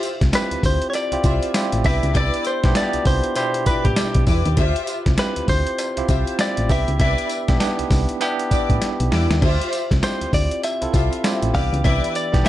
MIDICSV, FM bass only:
0, 0, Header, 1, 2, 480
1, 0, Start_track
1, 0, Tempo, 606061
1, 1701, Time_signature, 4, 2, 24, 8
1, 9890, End_track
2, 0, Start_track
2, 0, Title_t, "FM bass"
2, 0, Program_c, 0, 39
2, 170, Note_on_c, 0, 36, 93
2, 247, Note_off_c, 0, 36, 0
2, 407, Note_on_c, 0, 38, 46
2, 445, Note_off_c, 0, 38, 0
2, 501, Note_on_c, 0, 38, 86
2, 624, Note_off_c, 0, 38, 0
2, 886, Note_on_c, 0, 36, 53
2, 924, Note_off_c, 0, 36, 0
2, 983, Note_on_c, 0, 36, 101
2, 1105, Note_off_c, 0, 36, 0
2, 1370, Note_on_c, 0, 33, 88
2, 1447, Note_off_c, 0, 33, 0
2, 1463, Note_on_c, 0, 36, 92
2, 1585, Note_off_c, 0, 36, 0
2, 1609, Note_on_c, 0, 37, 96
2, 1686, Note_off_c, 0, 37, 0
2, 1702, Note_on_c, 0, 36, 112
2, 1824, Note_off_c, 0, 36, 0
2, 2090, Note_on_c, 0, 35, 98
2, 2167, Note_off_c, 0, 35, 0
2, 2328, Note_on_c, 0, 36, 49
2, 2366, Note_off_c, 0, 36, 0
2, 2421, Note_on_c, 0, 36, 89
2, 2543, Note_off_c, 0, 36, 0
2, 2902, Note_on_c, 0, 33, 50
2, 2961, Note_off_c, 0, 33, 0
2, 3048, Note_on_c, 0, 33, 96
2, 3126, Note_off_c, 0, 33, 0
2, 3287, Note_on_c, 0, 35, 95
2, 3365, Note_off_c, 0, 35, 0
2, 3382, Note_on_c, 0, 40, 94
2, 3504, Note_off_c, 0, 40, 0
2, 3531, Note_on_c, 0, 39, 109
2, 3607, Note_off_c, 0, 39, 0
2, 3622, Note_on_c, 0, 38, 116
2, 3744, Note_off_c, 0, 38, 0
2, 4008, Note_on_c, 0, 36, 96
2, 4086, Note_off_c, 0, 36, 0
2, 4251, Note_on_c, 0, 38, 48
2, 4288, Note_off_c, 0, 38, 0
2, 4341, Note_on_c, 0, 38, 84
2, 4464, Note_off_c, 0, 38, 0
2, 4732, Note_on_c, 0, 36, 55
2, 4768, Note_off_c, 0, 36, 0
2, 4821, Note_on_c, 0, 36, 98
2, 4944, Note_off_c, 0, 36, 0
2, 5211, Note_on_c, 0, 33, 87
2, 5287, Note_off_c, 0, 33, 0
2, 5303, Note_on_c, 0, 36, 91
2, 5425, Note_off_c, 0, 36, 0
2, 5449, Note_on_c, 0, 37, 90
2, 5527, Note_off_c, 0, 37, 0
2, 5542, Note_on_c, 0, 36, 120
2, 5664, Note_off_c, 0, 36, 0
2, 5929, Note_on_c, 0, 35, 91
2, 6006, Note_off_c, 0, 35, 0
2, 6173, Note_on_c, 0, 36, 46
2, 6209, Note_off_c, 0, 36, 0
2, 6262, Note_on_c, 0, 36, 96
2, 6384, Note_off_c, 0, 36, 0
2, 6742, Note_on_c, 0, 33, 49
2, 6801, Note_off_c, 0, 33, 0
2, 6889, Note_on_c, 0, 33, 92
2, 6966, Note_off_c, 0, 33, 0
2, 7130, Note_on_c, 0, 35, 93
2, 7207, Note_off_c, 0, 35, 0
2, 7223, Note_on_c, 0, 40, 88
2, 7345, Note_off_c, 0, 40, 0
2, 7369, Note_on_c, 0, 39, 96
2, 7446, Note_off_c, 0, 39, 0
2, 7463, Note_on_c, 0, 38, 122
2, 7585, Note_off_c, 0, 38, 0
2, 7849, Note_on_c, 0, 36, 100
2, 7927, Note_off_c, 0, 36, 0
2, 8090, Note_on_c, 0, 38, 50
2, 8127, Note_off_c, 0, 38, 0
2, 8182, Note_on_c, 0, 38, 86
2, 8304, Note_off_c, 0, 38, 0
2, 8571, Note_on_c, 0, 36, 56
2, 8608, Note_off_c, 0, 36, 0
2, 8664, Note_on_c, 0, 36, 103
2, 8785, Note_off_c, 0, 36, 0
2, 9050, Note_on_c, 0, 33, 90
2, 9127, Note_off_c, 0, 33, 0
2, 9144, Note_on_c, 0, 36, 88
2, 9266, Note_off_c, 0, 36, 0
2, 9287, Note_on_c, 0, 37, 101
2, 9365, Note_off_c, 0, 37, 0
2, 9385, Note_on_c, 0, 36, 127
2, 9506, Note_off_c, 0, 36, 0
2, 9773, Note_on_c, 0, 35, 95
2, 9849, Note_off_c, 0, 35, 0
2, 9890, End_track
0, 0, End_of_file